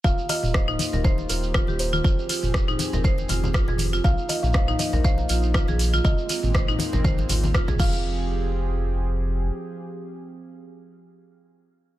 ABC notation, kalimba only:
X:1
M:4/4
L:1/16
Q:"Swing 16ths" 1/4=120
K:Fm
V:1 name="Kalimba"
f2 e4 z2 c2 B4 c2- | c12- c2 z2 | f2 e f f2 e2 f8 | e12 z2 f2- |
f16- | f16 |]